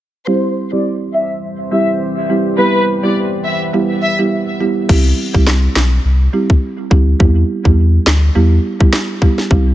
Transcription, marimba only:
0.27 G3 C4 E4 G4
0.72 G3 C4 E4 G4
1.71 G3 C4 E4 G4
2.29 G3 C4 E4 G4
2.58 G3 B3 E4 G4
3.03 G3 B3 E4 G4
3.73 G3 B3 E4 G4
4.19 G3 B3 E4 G4
4.60 G3 B3 E4 G4
4.89 G3 C4 E4 G4
5.34 G3 C4 E4 G4
6.33 G3 C4 E4 G4
6.91 G3 C4 E4 G4
7.20 G3 B3 E4 G4
7.65 G3 B3 E4 G4
8.35 G3 B3 E4 G4
8.80 G3 B3 E4 G4
9.22 G3 B3 E4 G4
9.51 G3 C4 E4 G4

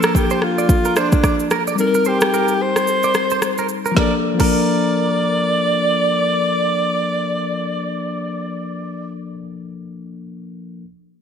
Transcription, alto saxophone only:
Already playing: A4
0.17 G4
0.44 F4
0.98 D4
1.80 A#4
2.08 G4
2.62 C5
3.98 D5
4.41 D5

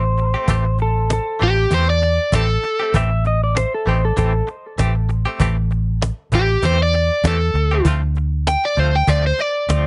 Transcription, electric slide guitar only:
Already playing: C5
0.82 A4
1.13 A4
2.96 E5
3.27 D#5
3.44 D5
3.57 C5
3.74 A4
3.88 C5
4.05 A4
4.19 A4

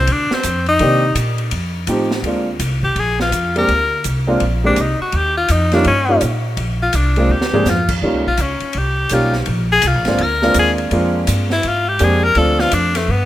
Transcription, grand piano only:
0.80 D#3 A#3 C4 D4 G4
1.88 F3 A3 C4 D#4 G4
2.25 G#3 A#3 C4 D4 F4
3.55 G#3 A#3 C4 D4 G4
4.27 G#3 A#3 C4 D4 F4
4.64 G#3 A#3 C4 D4 G4
5.73 G3 A#3 C#4 D#4 F4
6.09 G3 A#3 C#4 D#4 F4
7.17 G#3 A#3 C4 D4 F4
7.53 G#3 A#3 C4 D4 G#4
8.03 G3 A#3 C#4 D#4 F4
9.11 G3 A#3 C#4 D#4 G4
10.07 G#3 A#3 C4 D4 F4
10.42 G#3 A#3 C4 D4 F4
10.92 G#3 A#3 C4 D4 F4
12.00 G#3 A#3 C4 D4 G4
12.36 F3 A3 C4 D4 F4

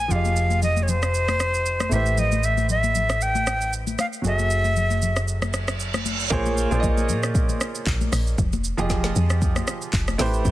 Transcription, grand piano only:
Already playing: A#3 F4 G#4 C5 C#5
0.08 F3 F4 G4
0.13 G#4 D#5
1.89 A3 E4 G4
1.94 B4 C5
4.22 F#3 F#4 G#4
4.26 A4 E5
6.30 A#3 F4 G#4 C5 C#5
6.70 A#3 F4 G#4 C5 D5
6.80 D#5
8.77 F3 F4 G4 G#4 D#5
10.18 A3 E4 G4 B4 C5

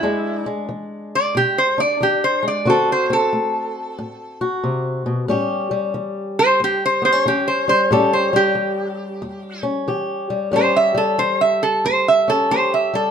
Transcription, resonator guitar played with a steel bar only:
Already playing: E4
1.15 D5
1.37 G4
1.58 C5
1.80 D5
2.03 G4
2.24 C5
2.48 D5
2.70 A4
2.92 C5
3.13 A4
6.39 C5
6.64 G4
6.86 C5
7.05 C5
7.28 G4
7.48 C5
7.69 C5
7.93 A4
8.13 C5
8.36 G4
10.56 C5
10.76 E5
10.98 A4
11.19 C5
11.41 E5
11.63 A4
11.86 C5
12.08 E5
12.30 A4
12.51 C5
12.74 E5
12.95 A4

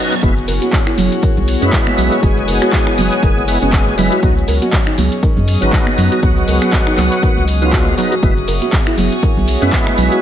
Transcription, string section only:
Already playing: C#4 G#4 D#5
0.23 F#4
0.62 C#5
1.83 G#5
4.23 C#4
4.96 G#4
5.43 D#6
8.23 F#4
8.37 C#5
9.00 G#5

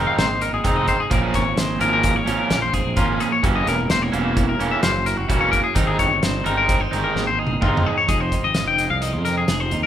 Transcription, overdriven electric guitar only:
Already playing: D#3 G#3 C4 D#4
0.64 D#3 G#3 C4 D#4
1.10 A#2 F3 A#3 C#4
1.80 A#2 F3 A#3 C#4
2.27 A#2 F3 A#3 C#4
2.97 A#2 F3 A#3 C#4
3.43 C#3 E3 A#3 C#4
4.12 C#3 E3 A#3 C#4
4.59 C#3 E3 A#3 C#4
5.29 C#3 E3 A#3 C#4
5.75 D#3 G#3 C4 D#4
6.44 D#3 G#3 C4 D#4
6.91 D#3 G#3 C4 D#4
7.61 D#3 G#3 C4 D#4

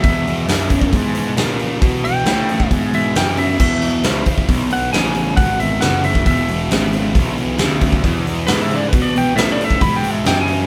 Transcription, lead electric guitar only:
0.03 E5
2.05 G5
2.70 E5
2.95 E5
3.17 G5
3.38 E5
3.60 E5
4.73 F#5
4.93 G#5
5.37 F#5
5.60 E5
5.81 F#5
6.05 E5
6.27 E5
8.47 B4
8.61 E5
8.76 D5
8.88 B4
9.02 D5
9.18 G5
9.37 E5
9.52 D5
9.64 E5
9.82 B5
9.96 G5
10.11 E5
10.27 G5
10.41 G#5

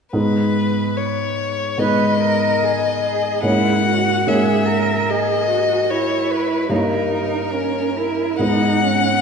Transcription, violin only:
0.14 B4
0.97 C#5
1.79 D#5
3.45 F#5
4.28 E5
5.09 D#5
5.90 C#5
6.30 B4
6.70 A#4
8.41 F#5

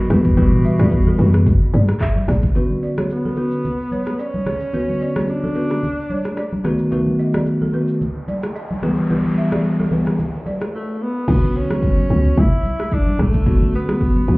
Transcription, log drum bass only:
0.10 E2
0.79 E2
1.19 F#2
1.74 G2
2.28 A1
11.28 B1
12.10 C#2
12.38 B1
13.19 A1
13.46 B1
14.28 D2

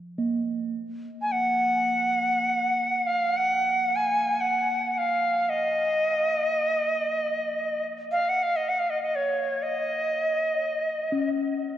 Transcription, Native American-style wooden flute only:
1.22 G#5
1.32 F#5
3.07 F5
3.36 F#5
3.96 G#5
4.40 F#5
4.91 F#5
4.98 F5
5.49 D#5
8.12 F5
8.29 F#5
8.43 F5
8.56 D#5
8.69 F#5
8.79 F5
8.90 D#5
9.03 D#5
9.15 C#5
9.63 D#5

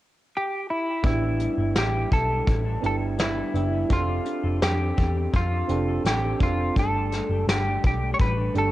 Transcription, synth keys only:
1.03 B3 D4 E4 G4
2.81 B3 D4 E4 G4
3.53 B3 D4 E4 G4
3.89 C4 D4 G4 A4
5.68 C4 D4 G4 A4
6.39 C4 D4 G4 A4
6.76 A3 D4 G4 A4
8.54 A3 D4 G4 A4

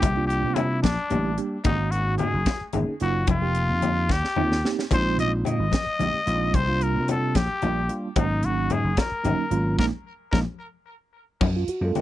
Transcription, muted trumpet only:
Already playing: G4
0.27 G4
0.55 E4
0.82 D4
1.65 D#4
1.91 F#4
2.18 G#4
3.02 F#4
3.30 F4
4.12 G4
4.93 C5
5.20 D#5
5.47 D#5
6.55 C5
6.83 A#4
7.11 A4
7.36 G4
8.18 D#4
8.45 F#4
8.72 G#4
8.99 A#4
9.79 A#4
10.31 A#4

